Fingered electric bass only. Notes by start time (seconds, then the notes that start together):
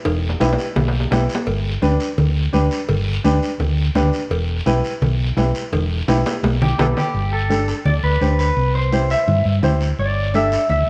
0.05 E1
0.41 B1
0.76 B1
1.12 B1
1.47 G1
1.83 D2
2.18 D2
2.54 D2
2.89 G1
3.24 D2
3.60 D2
3.95 D2
4.30 E1
4.66 B1
5.02 B1
5.37 B1
5.72 E1
6.08 B1
6.43 B1
6.79 B1
7.14 G1
7.85 D2
8.03 D2
8.21 D2
8.56 C2
9.27 G2
9.45 G2
9.63 D2
9.99 G1
10.70 D2